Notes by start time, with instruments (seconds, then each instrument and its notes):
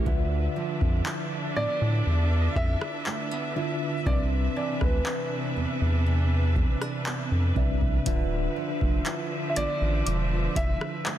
Already playing: nylon-string guitar A2 C#4, synth pluck G5
0.06 sub bass D2, tine electric piano D3 D4 F4 B4 E5, string section D3 D4 B4 E5, nylon-string guitar D3, kick
0.56 nylon-string guitar F3
0.81 sub bass F2, kick
1.06 nylon-string guitar E4, clap
1.56 sub bass A2, nylon-string guitar B3, grand piano D5
1.81 sub bass A2
2.06 sub bass E2
2.56 sub bass F2, nylon-string guitar E4, grand piano E5, kick
2.81 cross-stick
3.06 nylon-string guitar A3, clap
3.31 nylon-string guitar B3
3.56 tine electric piano D3 D4 F4 B4 E5, nylon-string guitar E4
4.06 sub bass C2, tine electric piano C3 C4 D4 B4 D#5, string section C3 D4, nylon-string guitar C3, grand piano D5, kick
4.14 tine electric piano E5
4.56 nylon-string guitar E3, grand piano D5, synth pluck A5
4.81 sub bass D2, grand piano B4, kick, cross-stick
5.06 nylon-string guitar D4, clap
5.56 sub bass E2, nylon-string guitar B3
5.81 sub bass E2
6.06 nylon-string guitar E3
6.56 nylon-string guitar C4, kick
6.81 nylon-string guitar D4, cross-stick
7.06 nylon-string guitar B3, clap
7.31 sub bass F2
7.56 sub bass C2, tine electric piano C3 C4 D4 B4 E5, nylon-string guitar D4, kick
7.81 kick
8.05 sub bass D1, tine electric piano D3 D4 F4 B4 E5, string section D3 F3 E5, nylon-string guitar D3, kick, closed hi-hat
8.56 nylon-string guitar F3
8.81 sub bass F1, kick
9.06 nylon-string guitar E4, clap, closed hi-hat
9.50 grand piano E5
9.56 sub bass A1, nylon-string guitar B3, grand piano D5, closed hi-hat
9.81 sub bass A1
10.06 sub bass E1, nylon-string guitar F3, synth pluck D6, closed hi-hat
10.56 sub bass F1, nylon-string guitar E4, grand piano E5, kick, closed hi-hat
10.81 cross-stick
11.06 nylon-string guitar A3, clap, closed hi-hat